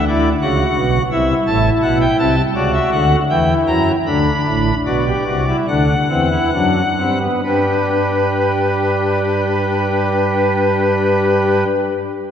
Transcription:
Already playing: D2 D3
0.08 E4 D5
0.42 C#2 C#3 F#4 F#5
0.76 B1 B2
1.11 C2 C3 E4 E5
1.47 A1 A2 A5
1.82 B1 B2 F#5
2.01 G5
2.19 C2 C3 A5
2.55 C#2 C#3 F#4 D5
2.74 E5
2.92 D2 D3 F#5
3.30 E2 E3 E4 G5
3.67 F#2 F#3 A#5
4.07 D2 D3 D4 B5
4.46 A1 A2
4.86 B1 B2 F#4 D5
5.06 G4
5.27 C2 C3 F#4
5.49 E4
5.68 D2 D3 D4 F#5
6.09 E2 E3 C4
6.32 E4
6.54 F#2 F#3 D4
6.99 G2 G3 C4
7.21 B3
7.44 G2 G3 D4 G4 B4

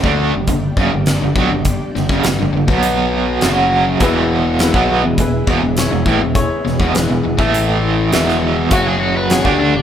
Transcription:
0.04 D2 D3 A3 D4 G4 D5 G5, kick
0.34 F#1 G2 D3
0.47 F#1 G2 D3, kick, closed hi-hat
0.77 F#1 F#2 C#3, kick
0.92 F#1 G2 D3
1.06 snare, closed hi-hat
1.21 F#1 G2 D3
1.36 B1 B2 F#3, kick
1.50 F#1 G2 D3
1.65 kick, closed hi-hat
1.95 F#1 G2 D3, snare
2.09 F#1 F#2 C#3, kick
2.23 F#1 G2 D3, snare, closed hi-hat
2.39 F#1 G2 D3
2.53 F#1 G2 D3
2.57 D3
2.68 B1 B2 F#3 B3 F#4 B4 F#5, kick
2.72 B2 F#3 B3
2.83 closed hi-hat
3.41 F#1 F#2 C#3 F#3 C#4 F#4 C#5 F#5, snare, closed hi-hat
3.45 F#2 C#3 F#3
4.00 E1 E2 B2 E3 E4 G#4 B4 E5, kick, closed hi-hat
4.59 E4 G#4 B4, snare, closed hi-hat
4.74 B1 B2 F#3 B3, kick
5.04 E1 E2 B2
5.18 E1 E2 B2 E4 G#4 B4, kick, closed hi-hat
5.47 E1 E2 B2, kick
5.62 E1 E2 B2
5.77 E4 G#4 C#5, snare, closed hi-hat
5.90 E1 E2 B2
6.06 A1 A2 E3, kick
6.21 E1 E2 B2
6.34 E4 G#4 B4 C#5, kick, closed hi-hat
6.65 E1 E2 B2, snare
6.80 E1 E2 B2, kick
6.94 E1 E2 B2 E4 G#4 B4, snare, closed hi-hat
7.08 E1 E2 B2
7.23 E1 E2 B2
7.37 A1 A2 E3 A3 E4 A4 E5, kick
7.54 closed hi-hat
8.11 E1 E2 B2 E3 B3 E4 G#4 B4 E5, snare, closed hi-hat
8.28 snare
8.71 F#1 F#2 C#3 F#3 C#4 F#4 C#5 F#5, kick, closed hi-hat
8.88 G#4
9.01 F#4
9.17 B4
9.30 F#4 G#4 C#5 F#5, snare, closed hi-hat
9.43 D2 D3 G3 A3 D4 G4 D5 G5, kick
9.59 D4
9.74 F#1 G2 D3

